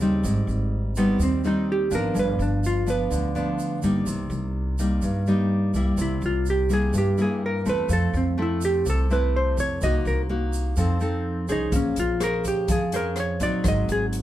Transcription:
Already playing: C#3
0.00 D#2 G3 C4 D#4, shaker
0.24 G#1 G#2, shaker
0.47 G#1, shaker
0.96 G3 B3 C4 D#4, shaker
1.18 D#2 D#3, shaker
1.23 C4
1.44 G3 C4 D#4, shaker
1.72 G4
1.91 G#1 F3 B3 D4, shaker
1.95 A#4
2.14 G1 G2, shaker
2.19 B4
2.39 G1 D4, shaker
2.64 F4, shaker
2.87 F3 B3 D4 B4, shaker
3.10 D2 D3, shaker
3.35 F3 B3 D4, shaker
3.59 shaker
3.82 G1 G3 A#3 D#4, shaker
4.06 C2 C3, shaker
4.30 C2, shaker
4.79 G3 A#3 D#4, shaker
5.02 G2, shaker
5.27 G3 A#3 D#4, shaker
5.74 C2 G3 A#3 E4, shaker
5.97 C2 C3, shaker
6.02 E4
6.22 C2, shaker
6.26 F4
6.46 shaker
6.50 G4
6.70 G3 A#3 E4 G#4, shaker
6.93 G2, shaker
6.98 G4
7.18 G3 A#3 E4, shaker
7.22 G#4
7.46 A#4
7.66 E2 A3 C4 E4 B4, shaker
7.89 F2 F3, shaker
7.93 A4
8.13 F2 C4, shaker
8.37 A3 C4 E4
8.42 E4
8.61 G4, shaker
8.85 C2 C3, shaker
8.90 A4
9.10 A3 C4 E4 B4, shaker
9.36 C5
9.57 F2 C#5, shaker
9.81 C2 C3 A#3 D#4 F#4 D#5, shaker
10.05 C2 A#4, shaker
10.29 A#3 D#4 F#4
10.53 shaker
10.76 F2 F3 C4 D#4 A4, shaker
11.00 C4 D#4 A4, shaker
11.48 C2 C#4 D#4 G#4 C5, shaker
11.72 A#1 A#3 C#4, kick, closed hi-hat, shaker
11.96 A#1 F4, closed hi-hat, shaker
12.20 C#4 G#4 A#4 C5, cross-stick, closed hi-hat
12.45 G4, kick, closed hi-hat, shaker
12.68 F2 F3 G#4, kick, closed hi-hat, shaker
12.92 C#4 G#4 A#4 C5, closed hi-hat, shaker
13.16 cross-stick, closed hi-hat
13.20 C#5
13.40 A#1 F#3 C4 D#4 D5, kick, closed hi-hat, shaker
13.64 G#1 G#2, kick, cross-stick, closed hi-hat, shaker
13.68 D#5
13.89 G#1 G#4, closed hi-hat, shaker
14.13 closed hi-hat

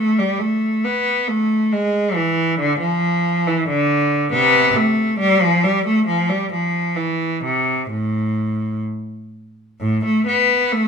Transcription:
Already playing: A3
0.19 G3
0.39 A3
0.85 B3
1.28 A3
1.72 G#3
2.15 E3
2.60 D3
2.79 F3
3.47 E3
3.69 D3
4.32 C3 B3
4.76 A3
5.19 G3
5.41 F3
5.63 G3
5.86 A3
6.07 F3
6.29 G3
6.52 F3
6.96 E3
7.44 C3
7.91 A2
9.80 A2
10.05 A3
10.27 B3
10.73 A3

